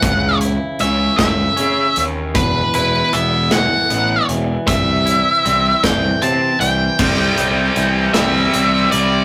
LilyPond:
<<
  \new Staff \with { instrumentName = "Lead electric guitar" } { \time 6/8 \key c \lydian \tempo 4. = 52 fis''8 r8 e''8 e''4 r8 | b'8 b'8 e''8 fis''4 r8 | e''4. g''8 a''8 g''8~ | g''4. e''4 d''8 | }
  \new Staff \with { instrumentName = "Clean electric guitar" } { \time 6/8 \key c \lydian cis8 e'8 cis'4 cis'4 | e,8 e'8 b8 e8 b8 e8 | c8 e'8 c'8 e8 c'8 e8 | c8 g8 e8 g8 c'8 e'8 | }
  \new Staff \with { instrumentName = "Distorted electric guitar" } { \clef bass \time 6/8 \key c \lydian r2. | r2. | r2. | <c g c'>4. <c g c'>4. | }
  \new Staff \with { instrumentName = "Picked electric bass" } { \clef bass \time 6/8 \key c \lydian cis,4 cis,8 cis,8 cis8 dis,8 | e,,8 e,,8 e,,4 a,,8 e,,8 | c,4 c,8 c,8 c8 c,8 | c,8 c,8 c,8 c,8 c,8 c,8 | }
  \new DrumStaff \with { instrumentName = "Drums" } \drummode { \time 6/8 <hh bd>8 hh8 hh8 <hh bd sn>8 hh8 hh8 | <hh bd>8 hh8 hh8 <hh sn>8 hh8 hh8 | <hh bd>8 hh8 hh8 <hh bd sn>8 hh8 hh8 | <cymc bd>8 hh8 hh8 <hh sn>8 hh8 hh8 | }
>>